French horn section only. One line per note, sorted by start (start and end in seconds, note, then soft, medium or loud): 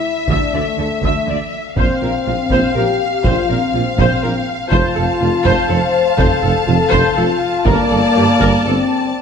0.00 0.28 E4 medium
0.28 0.52 D4 medium
0.54 1.52 A3 medium
1.77 2.71 C4 medium
2.75 3.24 G4 medium
3.23 3.48 F4 medium
3.49 4.47 C4 medium
4.70 5.65 F4 medium
5.69 6.18 C5 medium
6.17 6.66 A4 loud
6.68 7.16 A4 medium
7.18 7.66 F4 medium
7.66 8.66 A#3 loud
8.65 9.15 C4 medium